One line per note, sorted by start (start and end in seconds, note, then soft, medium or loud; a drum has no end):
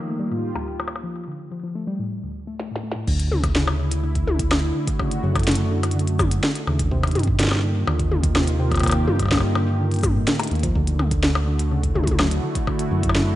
0.00 1.15 D#3 medium
0.00 1.15 A#3 medium
0.07 0.12 A3 loud
0.15 1.15 F4 medium
0.19 0.27 G3 loud
0.27 1.15 G4 medium
0.31 0.43 A2 medium
0.55 0.63 D2 loud
0.55 percussion blips medium
0.80 percussion blips medium
0.88 percussion blips medium
0.96 percussion blips soft
1.03 1.11 F3 medium
1.27 1.39 D3 medium
1.51 1.56 F3 medium
1.63 1.75 F3 medium
1.75 1.80 A3 loud
1.87 1.95 G3 loud
1.99 2.10 A2 medium
2.23 2.31 D2 loud
2.47 2.52 A3 medium
2.59 2.71 A3 medium
2.59 snare medium
2.71 2.76 A2 medium
2.76 snare medium
2.83 2.91 A3 medium
2.92 3.03 A2 medium
2.92 snare medium
3.07 4.24 D2 loud
3.07 6.91 D3 medium
3.07 3.15 D3 medium
3.07 kick medium
3.07 crash loud
3.20 closed hi-hat medium
3.31 3.43 C#3 medium
3.31 6.91 E4 medium
3.31 high tom medium
3.43 6.91 A3 medium
3.43 kick loud
3.43 closed hi-hat medium
3.43 percussion blips medium
3.55 3.63 C#3 loud
3.55 snare loud
3.68 percussion blips medium
3.79 3.87 C#3 medium
3.91 closed hi-hat medium
4.03 4.11 D3 medium
4.15 kick medium
4.15 closed hi-hat soft
4.27 4.72 D2 medium
4.27 4.35 D3 medium
4.27 high tom medium
4.39 kick loud
4.39 closed hi-hat medium
4.51 4.59 D3 medium
4.51 snare loud
4.51 percussion blips medium
4.75 4.83 D3 medium
4.75 6.91 F#4 medium
4.87 kick loud
4.87 closed hi-hat medium
4.99 5.11 C#3 medium
4.99 kick medium
4.99 percussion blips medium
5.11 closed hi-hat medium
5.23 6.40 F#2 medium
5.23 5.31 C#3 loud
5.35 kick loud
5.35 closed hi-hat soft
5.35 percussion blips medium
5.39 closed hi-hat soft
5.43 closed hi-hat soft
5.47 5.55 C#3 medium
5.47 snare loud
5.47 closed hi-hat soft
5.51 closed hi-hat medium
5.55 closed hi-hat medium
5.71 5.79 D3 medium
5.83 closed hi-hat medium
5.83 percussion blips medium
5.91 closed hi-hat medium
5.95 6.03 D3 medium
5.99 closed hi-hat soft
6.07 closed hi-hat soft
6.19 6.27 D3 medium
6.19 kick loud
6.19 high tom medium
6.19 percussion blips medium
6.19 shaker medium
6.31 closed hi-hat medium
6.43 6.51 D3 medium
6.43 snare loud
6.55 closed hi-hat medium
6.67 7.17 D#2 medium
6.67 6.79 C#3 medium
6.67 percussion blips medium
6.79 kick loud
6.79 closed hi-hat medium
6.91 6.99 C3 loud
6.91 10.75 D#3 medium
6.91 kick medium
7.03 closed hi-hat soft
7.03 percussion blips medium
7.07 closed hi-hat soft
7.11 closed hi-hat soft
7.15 7.84 G2 medium
7.15 7.23 C3 medium
7.15 closed hi-hat soft
7.15 high tom medium
7.19 closed hi-hat soft
7.23 kick loud
7.23 closed hi-hat soft
7.37 7.47 D3 medium
7.37 10.75 A#3 medium
7.37 snare loud
7.37 closed hi-hat medium
7.43 snare loud
7.47 snare medium
7.51 snare medium
7.51 percussion blips medium
7.55 snare medium
7.59 snare soft
7.63 7.71 D3 medium
7.63 10.75 F4 medium
7.87 9.09 D#2 loud
7.87 7.95 D3 medium
7.87 percussion blips medium
7.99 kick medium
7.99 closed hi-hat soft
8.11 8.19 D3 medium
8.11 high tom medium
8.23 kick loud
8.23 closed hi-hat medium
8.35 8.47 C3 medium
8.35 snare loud
8.35 percussion blips medium
8.44 10.75 G4 medium
8.44 closed hi-hat medium
8.59 8.67 C3 loud
8.71 kick loud
8.71 closed hi-hat soft
8.71 percussion blips soft
8.74 closed hi-hat soft
8.74 percussion blips soft
8.77 closed hi-hat soft
8.77 percussion blips soft
8.80 closed hi-hat soft
8.80 percussion blips soft
8.83 8.91 C3 medium
8.83 kick medium
8.83 percussion blips medium
8.86 closed hi-hat medium
8.86 percussion blips medium
8.89 closed hi-hat medium
8.89 percussion blips medium
8.92 percussion blips medium
9.07 10.24 G2 medium
9.07 9.15 D3 medium
9.07 high tom medium
9.19 kick medium
9.19 closed hi-hat medium
9.19 percussion blips soft
9.23 kick medium
9.23 percussion blips soft
9.26 percussion blips soft
9.28 kick medium
9.28 snare loud
9.28 percussion blips soft
9.31 9.39 D3 medium
9.31 percussion blips soft
9.34 kick loud
9.34 percussion blips soft
9.37 percussion blips soft
9.40 percussion blips soft
9.55 9.63 D3 medium
9.55 percussion blips medium
9.80 9.87 D3 medium
9.91 closed hi-hat soft
9.94 closed hi-hat soft
9.96 closed hi-hat soft
9.99 closed hi-hat soft
10.03 kick loud
10.03 high tom medium
10.03 percussion blips medium
10.03 shaker medium
10.15 10.23 A2 medium
10.27 10.35 D3 medium
10.27 snare loud
10.27 closed hi-hat medium
10.39 10.44 A3 medium
10.39 closed hi-hat medium
10.39 percussion blips medium
10.43 closed hi-hat soft
10.47 10.72 D#2 medium
10.47 closed hi-hat soft
10.51 closed hi-hat soft
10.55 closed hi-hat soft
10.59 kick loud
10.59 closed hi-hat soft
10.63 10.71 F3 medium
10.63 closed hi-hat medium
10.75 11.92 D2 loud
10.75 13.36 D3 medium
10.75 10.83 D3 medium
10.75 kick medium
10.87 13.36 A3 medium
10.87 closed hi-hat soft
10.99 11.07 D3 medium
10.99 high tom medium
10.99 percussion blips medium
11.11 kick loud
11.11 closed hi-hat medium
11.23 11.31 D3 medium
11.23 snare loud
11.29 13.36 F#4 medium
11.35 percussion blips medium
11.47 11.55 D3 medium
11.59 closed hi-hat medium
11.71 11.83 C#3 medium
11.76 13.36 E4 medium
11.83 kick medium
11.83 closed hi-hat soft
11.95 12.40 D2 medium
11.95 12.03 C#3 loud
11.95 high tom medium
12.03 kick loud
12.03 closed hi-hat medium
12.03 high tom medium
12.11 high tom medium
12.19 12.27 F#3 medium
12.19 snare loud
12.19 percussion blips medium
12.31 closed hi-hat medium
12.43 12.51 D3 medium
12.55 kick loud
12.55 closed hi-hat medium
12.67 12.75 D3 medium
12.67 kick medium
12.67 percussion blips medium
12.79 closed hi-hat medium
12.91 13.36 F#2 medium
12.91 12.99 D3 medium
13.03 kick loud
13.03 closed hi-hat medium
13.09 percussion blips medium
13.15 13.23 D3 medium
13.15 snare loud